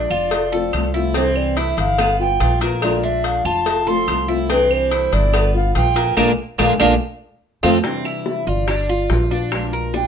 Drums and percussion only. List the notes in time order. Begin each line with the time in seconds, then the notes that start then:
0.11 claves
0.31 cowbell
0.73 cowbell, claves
1.14 cowbell
1.36 claves
1.57 cowbell
1.78 cowbell
1.98 cowbell, claves
2.40 cowbell
2.61 cowbell
2.82 cowbell, claves
3.24 cowbell
3.45 claves
3.66 cowbell
4.08 cowbell, claves
4.50 cowbell
4.71 claves
4.91 cowbell
5.13 cowbell
5.34 cowbell, claves
5.75 cowbell
5.96 cowbell
6.17 cowbell, claves
6.59 cowbell, claves
6.80 cowbell, claves
7.63 cowbell, claves
7.84 high bongo
8.05 high bongo, claves
8.26 high bongo
8.68 high bongo, claves
8.89 high bongo
9.10 high bongo, low bongo
9.31 high bongo
9.52 high bongo, claves
9.73 high bongo
9.94 high bongo